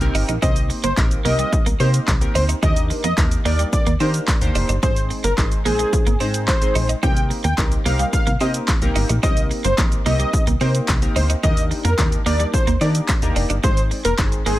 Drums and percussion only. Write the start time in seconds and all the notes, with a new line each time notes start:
0.01 closed hi-hat, shaker
0.15 open hi-hat, shaker
0.29 closed hi-hat, shaker
0.42 kick, shaker
0.56 closed hi-hat, shaker
0.70 open hi-hat, shaker
0.84 closed hi-hat, shaker
0.97 kick, clap, shaker
1.11 closed hi-hat, shaker
1.25 open hi-hat, shaker
1.39 closed hi-hat, shaker
1.53 kick, shaker
1.66 closed hi-hat, shaker
1.80 open hi-hat, shaker
1.94 closed hi-hat, shaker
2.08 kick, clap, shaker
2.21 closed hi-hat, shaker
2.35 open hi-hat, shaker
2.49 closed hi-hat, shaker
2.63 kick, shaker
2.76 closed hi-hat, shaker
2.90 open hi-hat, shaker
3.04 closed hi-hat, shaker
3.18 kick, clap, shaker
3.31 closed hi-hat, shaker
3.46 open hi-hat, shaker
3.59 closed hi-hat, shaker
3.73 kick, shaker
3.87 closed hi-hat, shaker
4.00 open hi-hat, shaker
4.14 closed hi-hat, shaker
4.28 kick, clap, shaker
4.41 closed hi-hat, shaker
4.55 open hi-hat, shaker
4.69 closed hi-hat, shaker
4.83 kick, shaker
4.96 closed hi-hat, shaker
5.11 open hi-hat, shaker
5.24 closed hi-hat, shaker
5.38 kick, clap, shaker
5.52 closed hi-hat, shaker
5.66 open hi-hat, shaker
5.79 closed hi-hat, shaker
5.93 kick, shaker
6.07 closed hi-hat, shaker
6.20 open hi-hat, shaker
6.34 closed hi-hat, shaker
6.48 kick, clap, shaker
6.62 closed hi-hat, shaker
6.75 open hi-hat, shaker
6.89 closed hi-hat, shaker
7.03 kick, shaker
7.17 closed hi-hat, shaker
7.31 open hi-hat, shaker
7.44 closed hi-hat, shaker
7.58 kick, clap, shaker
7.72 closed hi-hat, shaker
7.86 open hi-hat, shaker
7.99 closed hi-hat, shaker
8.13 kick, shaker
8.27 closed hi-hat, shaker
8.40 open hi-hat, shaker
8.54 closed hi-hat, shaker
8.68 kick, clap, shaker
8.82 closed hi-hat, shaker
8.96 open hi-hat, shaker
9.09 closed hi-hat, shaker
9.23 kick, shaker
9.37 closed hi-hat, shaker
9.51 open hi-hat, shaker
9.64 closed hi-hat, shaker
9.78 kick, clap, shaker
9.92 closed hi-hat, shaker
10.06 open hi-hat, shaker
10.20 closed hi-hat, shaker
10.33 kick, shaker
10.47 closed hi-hat, shaker
10.61 open hi-hat, shaker
10.75 closed hi-hat, shaker
10.88 kick, clap, shaker
11.02 closed hi-hat, shaker
11.16 open hi-hat, shaker
11.30 closed hi-hat, shaker
11.43 kick, shaker
11.57 closed hi-hat, shaker
11.71 open hi-hat, shaker
11.85 closed hi-hat, shaker
11.98 kick, clap, shaker
12.12 closed hi-hat, shaker
12.26 open hi-hat, shaker
12.40 closed hi-hat, shaker
12.54 kick, shaker
12.67 closed hi-hat, shaker
12.81 open hi-hat, shaker
12.95 closed hi-hat, shaker
13.08 kick, clap, shaker
13.22 closed hi-hat, shaker
13.36 open hi-hat, shaker
13.50 closed hi-hat, shaker
13.64 kick, shaker
13.77 closed hi-hat, shaker
13.91 open hi-hat, shaker
14.05 closed hi-hat, shaker
14.18 kick, clap, shaker
14.32 closed hi-hat, shaker
14.46 open hi-hat, shaker